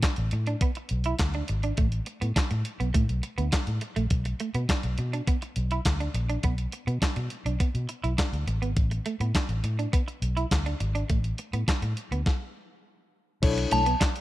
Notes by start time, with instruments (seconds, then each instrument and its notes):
0.02 clean electric guitar D4, kick, snare, clap, closed hi-hat
0.16 fingered electric bass A1, closed hi-hat
0.31 fingered electric bass A2, muted clean electric guitar stroke, closed hi-hat
0.47 clean electric guitar D4, closed hi-hat
0.61 clean electric guitar B3, kick, closed hi-hat
0.75 muted clean electric guitar stroke, closed hi-hat
0.89 fingered electric bass B1, closed hi-hat
1.04 clean electric guitar E4, closed hi-hat
1.19 fingered electric bass D2, kick, snare, clap, closed hi-hat
1.34 clean electric guitar D4, closed hi-hat
1.48 fingered electric bass G#1, muted clean electric guitar stroke, closed hi-hat
1.63 clean electric guitar D4, closed hi-hat
1.77 fingered electric bass A1, clean electric guitar A3, kick, closed hi-hat
1.92 closed hi-hat
2.06 muted clean electric guitar stroke, closed hi-hat
2.21 fingered electric bass A2, clean electric guitar B3, closed hi-hat
2.36 clean electric guitar D4, muted fingered electric bass stroke, kick, snare, clap, closed hi-hat
2.51 fingered electric bass A2, muted clean electric guitar stroke, closed hi-hat
2.65 closed hi-hat
2.80 fingered electric bass B1, clean electric guitar B3, closed hi-hat
2.94 fingered electric bass A2, clean electric guitar A3, kick, closed hi-hat
3.09 fingered electric bass B1, closed hi-hat
3.23 muted clean electric guitar stroke, closed hi-hat
3.38 fingered electric bass D2, clean electric guitar B3, closed hi-hat
3.52 clean electric guitar D4, kick, snare, clap, closed hi-hat
3.67 fingered electric bass A2, closed hi-hat
3.81 muted clean electric guitar stroke, closed hi-hat
3.96 fingered electric bass A#1, clean electric guitar A3, closed hi-hat
4.10 fingered electric bass B1, kick, closed hi-hat
4.25 muted clean electric guitar stroke, closed hi-hat
4.40 clean electric guitar A3, closed hi-hat
4.54 fingered electric bass B2, clean electric guitar B3, closed hi-hat
4.69 clean electric guitar D4, kick, snare, clap, closed hi-hat
4.83 fingered electric bass B1, closed hi-hat
4.98 fingered electric bass B2, muted clean electric guitar stroke, closed hi-hat
5.13 clean electric guitar D4, closed hi-hat
5.27 clean electric guitar B3, kick, closed hi-hat
5.42 muted clean electric guitar stroke, closed hi-hat
5.56 fingered electric bass B1, closed hi-hat
5.71 clean electric guitar E4, closed hi-hat
5.85 fingered electric bass D2, kick, snare, clap, closed hi-hat
6.00 clean electric guitar D4, closed hi-hat
6.14 fingered electric bass A#1, muted clean electric guitar stroke, closed hi-hat
6.30 clean electric guitar D4, closed hi-hat
6.43 fingered electric bass B1, clean electric guitar B3, kick, closed hi-hat
6.58 closed hi-hat
6.72 muted clean electric guitar stroke, closed hi-hat
6.87 fingered electric bass B2, clean electric guitar B3, closed hi-hat
7.02 clean electric guitar D4, muted fingered electric bass stroke, kick, snare, clap, closed hi-hat
7.16 fingered electric bass B2, muted clean electric guitar stroke, closed hi-hat
7.30 closed hi-hat
7.45 fingered electric bass B1, clean electric guitar D4, closed hi-hat
7.60 clean electric guitar B3, kick, closed hi-hat
7.75 fingered electric bass B2, closed hi-hat
7.89 muted clean electric guitar stroke, closed hi-hat
8.04 fingered electric bass B1, clean electric guitar E4, closed hi-hat
8.18 clean electric guitar D4, kick, snare, clap, closed hi-hat
8.33 fingered electric bass D2, closed hi-hat
8.47 fingered electric bass A1, muted clean electric guitar stroke, closed hi-hat
8.62 fingered electric bass G#1, clean electric guitar B3, closed hi-hat
8.77 fingered electric bass A1, kick, closed hi-hat
8.91 muted clean electric guitar stroke, closed hi-hat
9.06 clean electric guitar A3, closed hi-hat
9.20 fingered electric bass A2, clean electric guitar B3, closed hi-hat
9.35 clean electric guitar D4, kick, snare, clap, closed hi-hat
9.49 fingered electric bass A1, closed hi-hat
9.64 fingered electric bass A2, muted clean electric guitar stroke, closed hi-hat
9.79 clean electric guitar D4, closed hi-hat
9.93 clean electric guitar B3, kick, closed hi-hat
10.08 muted clean electric guitar stroke, closed hi-hat
10.22 fingered electric bass B1, closed hi-hat
10.37 clean electric guitar E4, closed hi-hat
10.51 fingered electric bass D2, kick, snare, clap, closed hi-hat
10.66 clean electric guitar D4, closed hi-hat
10.80 fingered electric bass G#1, muted clean electric guitar stroke, closed hi-hat
10.95 clean electric guitar D4, closed hi-hat
11.10 fingered electric bass A1, clean electric guitar A3, kick, closed hi-hat
11.24 closed hi-hat
11.38 muted clean electric guitar stroke, closed hi-hat
11.53 fingered electric bass A2, clean electric guitar B3, closed hi-hat
11.68 clean electric guitar D4, muted fingered electric bass stroke, kick, snare, clap, closed hi-hat
11.82 fingered electric bass A2, muted clean electric guitar stroke, closed hi-hat
11.97 closed hi-hat
12.11 fingered electric bass D2, clean electric guitar B3, closed hi-hat
12.26 kick, snare
13.42 fingered electric bass B1, tine electric piano D4 E4 A4 C#5, kick, closed hi-hat, crash
13.58 muted clean electric guitar stroke, closed hi-hat
13.71 fingered electric bass B1, clean electric guitar A3, synth bell A5, closed hi-hat
13.86 clean electric guitar B3, closed hi-hat
14.00 clean electric guitar D4, kick, snare, clap, closed hi-hat
14.16 closed hi-hat